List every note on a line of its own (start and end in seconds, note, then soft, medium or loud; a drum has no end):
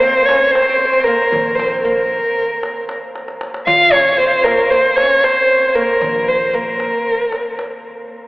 0.00 0.22 C4 medium
0.00 0.27 C5 medium
0.00 darbuka ka soft
0.23 0.29 C4 medium
0.23 0.52 C#5 medium
0.29 0.55 C#4 medium
0.29 darbuka tek medium
0.51 1.05 C5 medium
0.55 0.61 C4 medium
0.55 darbuka tek medium
0.62 0.68 C4 medium
0.69 0.76 C4 medium
0.78 0.84 C4 medium
0.78 darbuka ka soft
0.85 0.92 C4 medium
0.93 0.98 C4 medium
1.00 1.07 C4 medium
1.04 1.60 A#3 medium
1.04 1.56 A#4 medium
1.32 2.18 A#1 medium
1.32 darbuka dum medium
1.55 1.81 C5 medium
1.59 1.86 C4 medium
1.59 darbuka tek medium
1.81 2.85 A#3 medium
1.81 2.83 A#4 medium
2.37 darbuka ka soft
2.63 darbuka tek medium
2.89 darbuka tek medium
3.16 darbuka tek medium
3.28 darbuka ka medium
3.41 darbuka tek medium
3.54 darbuka ka medium
3.67 4.52 A#1 medium
3.67 3.93 F4 medium
3.67 3.94 F5 loud
3.67 darbuka dum loud
3.92 4.11 C#4 medium
3.92 4.20 C#5 medium
3.92 darbuka tek medium
4.13 4.18 C#4 medium
4.18 4.46 C4 medium
4.18 4.46 C5 medium
4.18 darbuka ka soft
4.44 4.72 A#3 medium
4.44 4.72 A#4 medium
4.44 darbuka tek medium
4.70 4.96 C4 medium
4.70 4.97 C5 medium
4.70 darbuka ka soft
4.96 5.23 C#4 medium
4.96 5.25 C#5 medium
4.96 darbuka tek medium
5.24 5.77 C4 medium
5.24 5.68 C5 medium
5.24 darbuka tek medium
5.50 darbuka ka soft
5.68 5.77 C5 medium
5.75 6.52 A#3 medium
5.75 6.30 A#4 medium
6.01 6.87 A#1 loud
6.01 darbuka dum medium
6.29 6.56 C5 medium
6.53 7.54 A#3 medium
6.53 7.59 A#4 medium
6.53 darbuka ka soft
6.80 darbuka tek medium
7.07 darbuka ka soft
7.32 darbuka tek medium
7.59 darbuka tek medium
7.85 darbuka ka soft